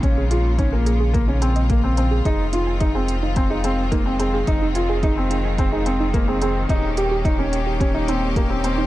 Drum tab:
HH |x-x-x-x-x-xxx-x-|x-x-x-x-x-x-x-x-|x-x-x-x-x-x-x-x-|x-x-x-x-x-x-x-x-|
BD |o---o---o---o---|o---o---o---o---|o---o---o---o---|o---o---o---o---|